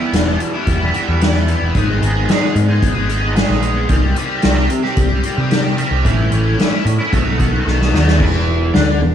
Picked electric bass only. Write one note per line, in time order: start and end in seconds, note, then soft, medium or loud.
0.13 0.36 E1 medium
0.67 0.90 E1 medium
1.08 1.54 E2 medium
1.62 1.73 E1 medium
1.75 1.98 G#1 medium
2.02 2.25 G#1 medium
2.55 2.79 G#2 medium
2.96 3.42 G#1 medium
3.50 3.84 A#1 medium
3.89 4.13 C2 medium
4.44 4.67 C2 medium
4.97 5.20 C2 medium
5.38 5.84 C3 medium
5.91 6.03 C2 medium
6.05 6.28 A1 medium
6.31 6.55 A1 medium
6.85 6.97 A2 medium
7.13 7.24 B1 loud
7.25 7.60 B1 medium
7.67 7.91 B1 medium
7.94 8.18 D#2 medium
8.20 8.70 E1 medium
8.76 9.00 D2 medium
9.00 9.15 E1 medium